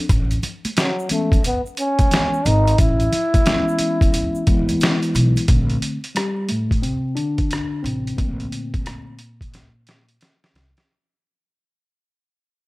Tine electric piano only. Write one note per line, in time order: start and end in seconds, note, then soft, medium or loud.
1.10 1.37 E3 medium
1.10 1.37 G#3 medium
1.10 1.37 B3 medium
1.10 1.37 C#4 medium
2.11 2.38 E3 medium
2.11 2.38 G#3 soft
2.11 2.38 B3 medium
2.11 2.38 C#4 medium
3.46 4.42 E3 medium
3.46 4.42 G#3 medium
3.46 4.43 B3 medium
3.46 4.43 C#4 medium
4.47 5.43 E3 medium
4.47 5.44 G#3 medium
4.47 5.44 B3 medium
4.47 5.44 E4 medium
5.48 5.97 D3 medium
5.48 5.97 A3 soft
5.48 5.98 C4 medium
6.15 6.50 G3 medium
6.15 6.48 G4 medium
6.49 6.82 A2 medium
6.49 6.81 A3 medium
6.82 7.16 C3 medium
6.82 7.14 C4 medium
7.15 7.81 D3 medium
7.15 7.86 D4 medium
7.83 8.16 C3 medium
7.83 8.18 C4 medium
8.17 10.17 A#2 medium
8.17 9.16 D3 medium
8.17 9.16 A3 soft
8.17 10.16 A#3 medium
8.17 9.16 C4 medium